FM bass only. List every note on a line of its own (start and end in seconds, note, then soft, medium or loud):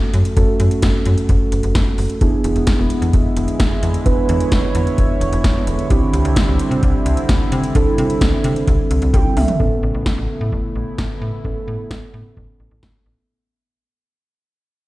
0.14 0.24 F#2 loud
0.37 0.47 F#1 loud
0.60 0.70 F#2 loud
0.83 0.93 F#1 loud
1.06 1.16 F#2 loud
1.29 1.39 F#1 loud
1.52 1.62 F#1 loud
1.64 1.74 F#1 loud
1.75 1.85 F#1 loud
1.98 2.08 F#1 loud
2.21 2.31 E1 loud
2.44 2.54 E1 loud
2.56 2.66 E1 medium
2.79 2.89 E1 loud
3.02 3.12 E2 medium
3.14 3.24 E1 loud
3.37 3.47 E1 loud
3.60 3.70 E1 loud
3.83 3.93 E2 loud
4.06 4.16 E1 loud
4.29 4.39 E2 loud
4.52 4.62 E1 loud
4.75 4.85 E2 loud
4.98 5.08 E1 loud
5.21 5.31 E1 loud
5.32 5.43 E1 loud
5.44 5.54 E1 loud
5.67 5.77 E1 loud
5.90 6.01 C2 loud
6.13 6.24 C2 loud
6.25 6.35 C2 loud
6.48 6.58 C2 loud
6.71 6.81 C3 medium
6.83 6.93 C2 loud
7.06 7.16 C2 loud
7.29 7.39 C2 loud
7.52 7.62 C3 loud
7.75 7.85 C2 loud
7.98 8.08 C3 loud
8.21 8.31 C2 loud
8.44 8.54 C3 loud
8.68 8.78 C2 loud
8.91 9.01 C2 loud
9.02 9.12 C2 loud
9.14 9.24 C2 loud
9.37 9.47 C2 loud
9.60 9.70 A1 loud
9.83 9.93 A1 loud
9.95 10.05 A1 loud
10.18 10.28 A1 loud
10.41 10.51 A2 loud
10.52 10.62 A1 loud
10.75 10.85 A1 loud
10.98 11.08 A1 loud
11.22 11.32 A2 loud
11.45 11.55 A1 loud
11.68 11.78 A2 loud
11.91 12.01 A1 loud
12.14 12.24 A2 loud
12.37 12.47 A1 loud
12.60 12.70 A1 medium
12.71 12.81 A1 medium
12.83 12.93 A1 loud
13.06 13.16 A1 loud